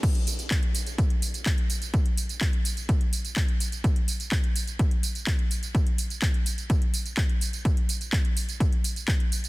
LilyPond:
\new DrumStaff \with { instrumentName = "Drums" } \drummode { \time 4/4 \tempo 4 = 126 <cymc hh bd tamb>16 hh16 <hho tamb>16 <hh tamb>16 <hc hh bd tamb>16 hh16 <hho tamb>16 <hh tamb>16 <hh bd tamb>16 hh16 <hho tamb>16 <hh tamb>16 <hc hh bd tamb>16 hh16 <hho tamb>16 <hh tamb>16 | <hh bd tamb>16 hh16 <hho tamb>16 <hh tamb>16 <hc hh bd tamb>16 hh16 <hho tamb>16 <hh tamb>16 <hh bd tamb>16 hh16 <hho tamb>16 <hh tamb>16 <hc hh bd tamb>16 hh16 <hho tamb>16 <hh tamb>16 | <hh bd tamb>16 hh16 <hho tamb>16 <hh tamb>16 <hc hh bd tamb>16 hh16 <hho tamb>16 <hh tamb>16 <hh bd tamb>16 hh16 <hho tamb>16 <hh tamb>16 <hc hh bd tamb>16 hh16 <hho tamb>16 <hh tamb>16 | <hh bd tamb>16 hh16 <hho tamb>16 <hh tamb>16 <hc hh bd tamb>16 hh16 <hho tamb>16 <hh tamb>16 <hh bd tamb>16 hh16 <hho tamb>16 <hh tamb>16 <hc hh bd tamb>16 hh16 <hho tamb>16 <hh tamb>16 |
<hh bd tamb>16 hh16 <hho tamb>16 <hh tamb>16 <hc hh bd tamb>16 hh16 <hho tamb>16 <hh tamb>16 <hh bd tamb>16 hh16 <hho tamb>16 <hh tamb>16 <hc hh bd tamb>16 hh16 <hho tamb>16 <hh tamb>16 | }